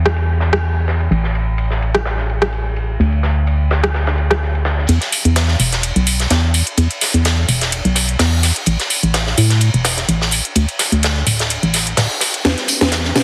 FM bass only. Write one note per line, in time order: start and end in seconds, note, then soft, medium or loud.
0.00 1.09 E2 medium
1.11 2.98 A1 medium
3.00 4.87 D2 medium
4.89 4.99 E2 loud
5.25 5.56 E2 medium
5.60 5.92 E1 medium
5.96 6.27 B1 loud
6.31 6.63 E2 medium
6.78 6.88 E2 loud
7.14 7.45 E2 medium
7.49 7.81 E1 medium
7.85 8.16 B1 loud
8.20 8.52 E2 medium
8.67 8.77 A1 loud
9.03 9.34 A1 medium
9.38 9.70 A2 medium
9.74 10.05 E1 loud
10.09 10.40 A1 medium
10.56 10.66 D2 loud
10.92 11.23 D2 loud
11.27 11.59 D1 medium
11.63 11.94 A1 medium
11.98 12.08 D1 loud
12.45 12.55 E2 loud
12.81 13.12 E2 loud
13.16 13.23 E1 medium